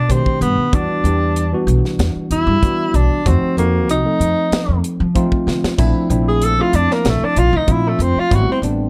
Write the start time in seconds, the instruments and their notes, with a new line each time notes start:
Already playing: upright bass B2, tenor saxophone D4
0.08 tine electric piano B2 D#3 A3 D4 G4, tenor saxophone C4, kick, closed hi-hat
0.26 kick
0.41 upright bass G2, tenor saxophone B3, closed hi-hat
0.57 muted upright bass stroke
0.73 upright bass E2, tine electric piano E3 G3 B3 D4 F#4, tenor saxophone D4, kick, closed hi-hat
1.04 upright bass E2, tine electric piano E3 G3 B3 D4 G4, closed hi-hat
1.36 closed hi-hat
1.52 tine electric piano E3 G3 B3 D4 F#4
1.67 upright bass B1, closed hi-hat
1.85 snare
1.99 upright bass E2, snare, closed hi-hat
2.16 muted upright bass stroke
2.31 upright bass E2, tenor saxophone E4, closed hi-hat
2.47 upright bass G2
2.62 tine electric piano E3 G3 B3 D4 F#4, upright bass E3, kick, closed hi-hat
2.94 upright bass B1, tenor saxophone D4, closed hi-hat
3.11 muted upright bass stroke
3.25 upright bass F2, tine electric piano F3 A3 C4 D#4 F#4, tenor saxophone C4, kick, closed hi-hat
3.42 muted upright bass stroke
3.57 upright bass F2, tine electric piano F3 C4 D#4 F#4 A4, tenor saxophone A#3, closed hi-hat
3.88 upright bass C2, tenor saxophone D#4, closed hi-hat
4.05 tine electric piano F3 A3 C4 D#4 A4
4.20 upright bass F2, closed hi-hat
4.52 muted upright bass stroke, snare, closed hi-hat
4.69 upright bass F2
4.84 closed hi-hat
5.00 upright bass F3
5.15 tine electric piano F3 A3 C4 D#4 F4, kick, closed hi-hat
5.32 kick
5.47 upright bass D3, snare
5.63 muted upright bass stroke, snare
5.78 upright bass A#1, tine electric piano F3 A3 C4 D4 E4, kick, closed hi-hat, splash
6.10 upright bass A#1, tine electric piano F3 A3 C4 D4 E4, closed hi-hat
6.28 tenor saxophone G#4
6.42 tenor saxophone A4, closed hi-hat
6.58 tine electric piano F3 A3 C4 D4 E4, tenor saxophone F4
6.73 upright bass F2, tenor saxophone D4, closed hi-hat
6.91 tenor saxophone A#3, snare
7.05 upright bass A#1, snare, closed hi-hat
7.09 tenor saxophone A3
7.24 tenor saxophone D4
7.36 upright bass A#1, tenor saxophone F4, closed hi-hat
7.53 upright bass D2, tenor saxophone D#4
7.67 upright bass A#2, tine electric piano F3 A3 C4 D4 F4, kick, closed hi-hat
7.71 tenor saxophone E4
7.88 tenor saxophone A3
7.99 upright bass F2, tenor saxophone C4, closed hi-hat
8.16 tenor saxophone F4, muted upright bass stroke
8.30 upright bass A1, tine electric piano G3 A3 B3 C4 E4, kick, closed hi-hat
8.35 tenor saxophone F#4
8.46 muted upright bass stroke
8.52 tenor saxophone C4
8.62 upright bass A1, tine electric piano G3 A3 B3 C4 D4, closed hi-hat